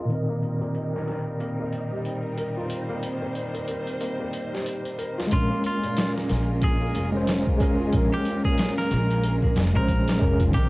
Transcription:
Already playing: felt piano A#2 G#3 A#3 F4 A#4, violin section A#4, synth texture D#5
0.05 tine electric piano A#2 D#3
0.09 violin section G3 C4 D#4, tine electric piano C4, closed hi-hat
0.15 tine electric piano A#4
0.29 felt piano A#3
0.43 closed hi-hat
0.61 felt piano A#2, closed hi-hat
0.75 closed hi-hat
0.93 felt piano A#4, snare
1.07 felt piano A#4, snare, closed hi-hat
1.40 felt piano A#3, closed hi-hat
1.60 felt piano A#3
1.73 closed hi-hat
1.92 felt piano G3
2.05 closed hi-hat
2.38 felt piano A#4, closed hi-hat
2.57 felt piano F4
2.70 violin section C5, closed hi-hat
2.90 felt piano A#3
3.03 closed hi-hat
3.22 felt piano A#2
3.35 closed hi-hat
3.54 felt piano A#4, closed hi-hat
3.68 felt piano A#4, closed hi-hat
3.87 closed hi-hat
4.01 felt piano A#3, closed hi-hat
4.20 felt piano A#3
4.33 closed hi-hat
4.53 felt piano G3, snare
4.66 closed hi-hat
4.85 closed hi-hat
4.99 felt piano A#4, closed hi-hat
5.18 felt piano F4, snare
5.27 tine electric piano G#3
5.31 upright bass A#1, violin section G#3 C#4 F4 A#4, tine electric piano C#4, clean electric guitar F4, kick, closed hi-hat
5.37 tine electric piano A#4
5.50 felt piano A#3
5.64 clean electric guitar F4, closed hi-hat
5.83 felt piano A#2, closed hi-hat
5.97 snare, closed hi-hat
6.16 felt piano A#4, snare
6.29 upright bass A#1, felt piano A#4, snare, closed hi-hat
6.62 felt piano A#3, clean electric guitar G#4, kick, closed hi-hat
6.82 felt piano A#3
6.95 upright bass F1, closed hi-hat
7.12 tine electric piano G#3 C#4, felt piano G#3
7.17 tine electric piano C5
7.27 snare, closed hi-hat
7.47 kick
7.57 tine electric piano G#3 C#4, felt piano A#4, kick, closed hi-hat
7.62 tine electric piano A#4
7.80 felt piano F4
7.88 tine electric piano G#3
7.93 upright bass A#1, tine electric piano C#4, kick, closed hi-hat
7.98 tine electric piano A#4
8.12 felt piano A#3, clean electric guitar G4
8.25 closed hi-hat
8.44 felt piano A#2, clean electric guitar G#4, kick
8.58 snare, closed hi-hat
8.78 felt piano A#4, clean electric guitar A#4, snare
8.91 upright bass A#1, felt piano A#4, closed hi-hat
9.10 closed hi-hat
9.23 felt piano A#3, closed hi-hat
9.42 felt piano A#3, kick
9.56 upright bass F1, snare, closed hi-hat
9.73 upright bass A#1, tine electric piano G#3 C#4, felt piano G#3, clean electric guitar A#4, kick
9.78 tine electric piano C5
9.88 kick, closed hi-hat
10.08 snare, closed hi-hat
10.19 upright bass F1, tine electric piano G#3 C#4, felt piano A#4, kick
10.24 tine electric piano A#4
10.40 felt piano F4, kick, closed hi-hat
10.50 upright bass A#1, tine electric piano D#3, violin section G3 C4 D#4, kick, closed hi-hat
10.54 tine electric piano C4, clean electric guitar G4
10.59 tine electric piano A#4

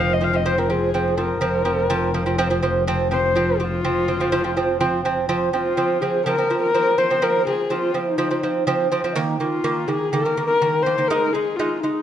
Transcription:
Already playing: double bass F1, lute F3 C4, horsehead fiddle F5
0.13 horsehead fiddle D#5
0.21 lute F3 C4, horsehead fiddle F5
0.33 lute F3 C4, horsehead fiddle D#5
0.46 lute F3 C4, horsehead fiddle C5
0.58 lute F3 C4, horsehead fiddle A#4
0.70 lute F3 C4, horsehead fiddle G#4
0.94 lute F3 C4
1.08 horsehead fiddle A#4
1.17 lute F3 C4
1.41 double bass F1, lute F3 C4
1.65 lute F3 C4
1.90 lute F3 C4
2.14 lute F3 C4
2.26 lute F3 C4
2.38 lute F3 C4
2.50 lute F3 C4
2.63 lute F3 C4
2.87 lute F3 C4
3.11 lute F3 C4, horsehead fiddle C5
3.35 lute F3 C4
3.60 lute F3 C4, horsehead fiddle F4
3.85 lute F3 C4
4.08 lute F3 C4
4.20 lute F3 C4
4.32 lute F3 C4
4.44 lute F3 C4
4.57 lute F3 C4
4.81 lute F3 C4
5.05 lute F3 C4
5.29 lute F3 C4
5.53 lute F3 C4, horsehead fiddle F4
5.77 lute F3 C4
6.02 lute F3 C4, horsehead fiddle G#4
6.26 lute F3 C4, horsehead fiddle A#4
6.38 lute F3 C4
6.50 lute F3 C4
6.63 horsehead fiddle A#4
6.74 lute F3 C4
6.98 lute F3 C4, horsehead fiddle C5
7.10 lute F3 C4
7.22 lute F3 C4, horsehead fiddle A#4
7.47 lute F3 C4, horsehead fiddle G#4
7.70 lute F3 C4, horsehead fiddle F4
7.94 lute F3 C4, horsehead fiddle D#4
8.18 lute F3 C4
8.31 lute F3 C4
8.43 lute F3 C4
8.67 lute F3 C4
8.92 lute F3 C4
9.04 lute F3 C4
9.15 lute D#3 A#3
9.40 lute D#3 A#3, horsehead fiddle F4
9.64 lute D#3 A#3
9.88 lute D#3 A#3, horsehead fiddle G#4
10.12 lute D#3 A#3, horsehead fiddle A#4
10.25 lute D#3 A#3
10.37 lute D#3 A#3
10.47 horsehead fiddle A#4
10.62 lute D#3 A#3
10.83 lute D#3 A#3, horsehead fiddle C5
10.98 lute D#3 A#3
11.08 lute G#3 D#4, horsehead fiddle A#4
11.32 lute G#3 D#4, horsehead fiddle G#4
11.56 lute G#3 D#4, horsehead fiddle F4
11.76 horsehead fiddle F4
11.80 lute G#3 D#4, horsehead fiddle D#4

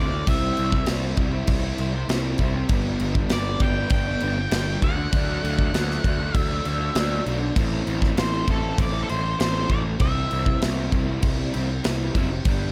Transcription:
Already playing: picked electric bass D2, overdriven electric guitar A2 E3 A3
0.00 lead electric guitar D5
0.11 muted overdriven electric guitar stroke
0.27 picked electric bass C2, overdriven electric guitar C3 G3 C4 E4, lead electric guitar E5, kick, crash
0.57 picked electric bass C2, crash
0.72 overdriven electric guitar G3 C4 E4, kick
0.86 picked electric bass C2, overdriven electric guitar C3 G3 C4, snare, crash
0.90 overdriven electric guitar E4
1.17 picked electric bass C2, overdriven electric guitar C3 G3 C4 E4, kick, crash
1.32 overdriven electric guitar G3 C4 E4
1.47 picked electric bass C2, kick, crash
1.62 overdriven electric guitar G3 C4 E4
1.78 picked electric bass C2, overdriven electric guitar C3 G3 C4 E4, crash
1.94 muted overdriven electric guitar stroke
2.09 picked electric bass C2, overdriven electric guitar C3 G3 C4 E4, snare, crash
2.38 picked electric bass C2, overdriven electric guitar C3 G3 C4 E4, kick, crash
2.54 muted overdriven electric guitar stroke
2.69 picked electric bass G1, overdriven electric guitar G2 D3 G3 B3 D4, kick, crash
3.00 picked electric bass G1, crash
3.15 overdriven electric guitar G3 B3 D4, kick
3.29 picked electric bass G1, overdriven electric guitar G2 D3 G3 B3, lead electric guitar D5, snare, crash
3.34 overdriven electric guitar D4
3.60 picked electric bass G1, overdriven electric guitar D3 G3 B3 D4, lead electric guitar G5, kick, crash
3.76 overdriven electric guitar G3 B3 D4
3.90 picked electric bass G1, lead electric guitar G5, kick, crash
4.07 overdriven electric guitar G3 B3 D4
4.20 picked electric bass G1, overdriven electric guitar D3 G3 B3 D4, crash
4.37 muted overdriven electric guitar stroke
4.51 picked electric bass G1, overdriven electric guitar G2 D3 G3 B3 D4, snare, crash
4.82 picked electric bass D2, overdriven electric guitar D3 F#3 A3 D4, lead electric guitar F#5, kick, crash
4.97 muted overdriven electric guitar stroke
5.12 picked electric bass D2, overdriven electric guitar D3 F#3 A3 D4, kick, crash
5.44 picked electric bass D2, crash
5.57 overdriven electric guitar F#3 A3 D4, kick
5.73 picked electric bass D2, overdriven electric guitar D3 F#3 A3 D4, snare, crash
5.91 snare
6.04 picked electric bass D2, overdriven electric guitar D3 F#3 A3 D4, kick, crash
6.18 overdriven electric guitar F#3 A3 D4
6.35 picked electric bass D2, lead electric guitar E5, kick, crash
6.49 overdriven electric guitar F#3 A3 D4
6.64 picked electric bass D2, overdriven electric guitar D3 F#3 A3 D4, crash
6.80 muted overdriven electric guitar stroke
6.95 picked electric bass D2, overdriven electric guitar D3 F#3 A3 D4, snare, crash
7.25 picked electric bass B1, overdriven electric guitar D3 F#3 A3 D4, crash
7.41 muted overdriven electric guitar stroke
7.56 picked electric bass A1, overdriven electric guitar A2 E3 A3 C4 E4, kick, crash
7.87 picked electric bass A1, crash
8.01 overdriven electric guitar A3 C4 E4, kick, snare
8.16 picked electric bass A1, overdriven electric guitar A2 E3 A3 C4 E4, lead electric guitar C5, snare, crash
8.46 picked electric bass A1, overdriven electric guitar E3 A3 C4 E4, kick, crash
8.51 lead electric guitar A4
8.62 overdriven electric guitar A3 C4 E4
8.78 picked electric bass A1, lead electric guitar D5, kick, crash
8.92 overdriven electric guitar A3 C4 E4
9.03 lead electric guitar A4
9.07 picked electric bass A1, overdriven electric guitar E3 A3 C4 E4, lead electric guitar C5, crash
9.23 muted overdriven electric guitar stroke
9.39 picked electric bass A1, overdriven electric guitar A2 E3 A3 C4 E4, lead electric guitar C5, snare, crash
9.68 picked electric bass A1, overdriven electric guitar E3 A3 C4 E4, lead electric guitar D5, kick, crash
9.84 muted overdriven electric guitar stroke
9.99 picked electric bass C2, overdriven electric guitar C3 E3 G3 C4 E4, lead electric guitar E5, kick, crash
10.31 picked electric bass C2, crash
10.46 overdriven electric guitar G3 C4 E4, kick
10.60 overdriven electric guitar C3 E3 G3 C4 E4, snare, crash
10.64 picked electric bass C2
10.92 picked electric bass C2, overdriven electric guitar E3 G3 C4 E4, kick, crash
11.07 overdriven electric guitar G3 C4 E4
11.22 picked electric bass C2, kick, crash
11.37 overdriven electric guitar G3 C4 E4
11.53 picked electric bass C2, overdriven electric guitar E3 G3 C4 E4, crash
11.68 muted overdriven electric guitar stroke
11.84 picked electric bass C2, overdriven electric guitar C3 E3 G3 C4 E4, snare, crash
12.15 picked electric bass F#1, overdriven electric guitar E3 G3 C4 E4, kick, crash
12.31 muted overdriven electric guitar stroke
12.45 picked electric bass G1, overdriven electric guitar G3 B3 D4 G4, kick, crash

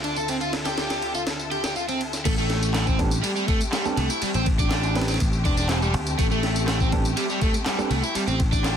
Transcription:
Already playing: picked electric bass D2, string section D3 C4 F4 A4 E5
0.04 overdriven electric guitar D4, ride
0.16 overdriven electric guitar A4, tambourine
0.28 overdriven electric guitar C4, ride, tambourine
0.41 overdriven electric guitar F4, ride, tambourine
0.53 snare, ride
0.65 overdriven electric guitar G4, snare, ride, tambourine
0.78 snare, ride, tambourine
0.90 snare, ride, tambourine
1.02 ride
1.15 overdriven electric guitar F4, tambourine
1.27 snare, ride, tambourine
1.39 tambourine
1.51 overdriven electric guitar G4, ride
1.64 overdriven electric guitar G4, snare, ride, tambourine
1.76 overdriven electric guitar F4, tambourine
1.88 overdriven electric guitar C4, ride, tambourine
2.01 ride
2.13 snare, tambourine
2.25 picked electric bass A1, overdriven electric guitar A3, string section A3 C4 G4, kick, crash, ride, tambourine
2.38 overdriven electric guitar A3, tambourine
2.50 snare, ride
2.63 tambourine
2.74 overdriven electric guitar A3, snare, clap, ride, tambourine
2.87 overdriven electric guitar C4, kick, tambourine
2.99 grand piano G3 B3 C4 D4 A4, kick, ride
3.11 tambourine
3.23 overdriven electric guitar G3, ride, tambourine
3.36 overdriven electric guitar G3, tambourine
3.48 overdriven electric guitar A3, kick, ride
3.61 tambourine
3.73 overdriven electric guitar G3, snare, clap, ride, tambourine
3.85 grand piano G3 B3 C4 D4 A4, tambourine
3.97 picked electric bass C2, overdriven electric guitar A3, ride
4.10 overdriven electric guitar E4, tambourine
4.22 overdriven electric guitar G3, muted picked electric bass stroke, ride, tambourine
4.34 picked electric bass A1, overdriven electric guitar C4, ride, tambourine
4.46 kick, ride
4.59 overdriven electric guitar D4, kick, tambourine
4.71 snare, clap, ride, tambourine
4.83 ride, tambourine
4.95 grand piano G3 B3 C4 D4 B4, snare, ride
5.01 snare, ride
5.08 overdriven electric guitar C4, snare, ride, tambourine
5.14 snare, ride
5.20 picked electric bass A1, kick, ride, tambourine
5.33 tambourine
5.45 picked electric bass E1, overdriven electric guitar D4, kick, ride
5.57 overdriven electric guitar D4, snare, tambourine
5.69 overdriven electric guitar C4, snare, clap, ride, tambourine
5.82 overdriven electric guitar G3, tambourine
5.94 picked electric bass D2, ride
6.07 tambourine
6.19 picked electric bass A1, overdriven electric guitar A3, kick, ride, tambourine
6.31 overdriven electric guitar A3, tambourine
6.43 snare, ride
6.56 tambourine
6.68 overdriven electric guitar A3, snare, clap, ride, tambourine
6.80 overdriven electric guitar C4, kick, tambourine
6.92 grand piano G3 B3 C4 D4 A4, kick, ride
7.05 tambourine
7.17 overdriven electric guitar G3, ride, tambourine
7.30 overdriven electric guitar G3, tambourine
7.41 overdriven electric guitar A3, kick, ride
7.54 tambourine
7.66 overdriven electric guitar G3, snare, clap, ride, tambourine
7.78 grand piano G3 B3 C4 D4 A4, tambourine
7.90 picked electric bass C2, overdriven electric guitar A3, ride
8.03 overdriven electric guitar E4, tambourine
8.15 overdriven electric guitar G3, muted picked electric bass stroke, ride, tambourine
8.27 picked electric bass A1, overdriven electric guitar C4, ride, tambourine
8.40 kick, ride
8.52 overdriven electric guitar D4, kick, tambourine
8.64 snare, clap, ride, tambourine

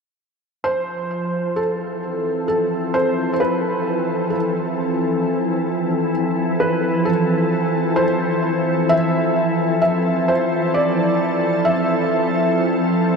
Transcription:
0.63 ambient pad F3, felt piano C5
1.49 ambient pad E3 C4
1.56 felt piano A4
1.77 ambient pad A4
2.48 felt piano A4
2.94 felt piano C5
3.33 felt piano C5
3.40 felt piano B4
4.30 felt piano A4
6.60 felt piano B4
7.05 felt piano A4
7.96 felt piano C5
8.89 felt piano E5
9.82 felt piano E5
10.28 felt piano C5
10.74 felt piano D5
11.65 felt piano E5

